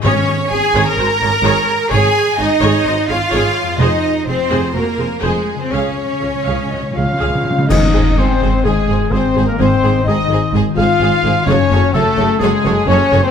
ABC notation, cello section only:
X:1
M:4/4
L:1/16
Q:1/4=127
K:Abmix
V:1 name="Cello section" clef=bass
D4 A3 B8- B | A4 E6 F6 | E4 C4 B,4 A,3 C | D12- D2 z2 |
A,,2 A,,2 A,,2 A,,2 A,,2 A,,2 A,,2 A,,2 | A,,2 A,,2 A,,2 A,,2 A,,2 A,,2 A,,2 A,,2 | G,,2 G,,2 G,,2 G,,2 G,,2 G,,2 G,,2 G,,2 |]